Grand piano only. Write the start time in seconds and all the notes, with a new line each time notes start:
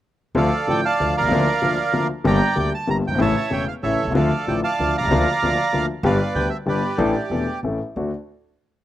0.35 D2 D3 F3 A3 F4
0.68 A1 A2 D3 F3 A3 F4
1.00 D2 D3 F3 A3 F4
1.20 B1
1.25 C2 C#2
1.31 D2 D3 F3 A#3 F4
1.62 D2 D3 F3 A#3 F4
1.92 D2 D3 F3 A#3 F4
2.24 G1 G2 D3 G3 A#3 G4
2.56 D2 D3 G3 A#3 G4
2.87 G1 G2 D3 G3 A#3 G4
3.08 F#1 G1
3.14 G#1 A2 C#3
3.18 A1 E3 A3 E4
3.50 E1 E2 C#3 E3 A3 E4
3.83 A1 A2 C#3 E3 A3 E4
4.04 B1
4.09 C2 C#2
4.14 D2 D3 F3 A3 F4
4.47 A1 A2 D3 F3 A3 F4
4.80 D2 D3 F3 A3 F4
5.00 B1 C2
5.08 C#2 D2 D3 F3 A#3 F4
5.43 D2 D3 F3 A#3 F4
5.73 D2 D3 F3 A#3 F4
6.04 G1 G2 D3 G3 B3 G4
6.36 D2 D3 G3 B3 G4
6.66 G1 G2 D3 G3 B3 G4
6.98 A1 A2 E3 A3 D4 A4
7.31 E1 E2 E3 A3 D4 A4
7.64 A1 A2 E3 A3 C#4 A4
7.96 D2 A3 D4 F#4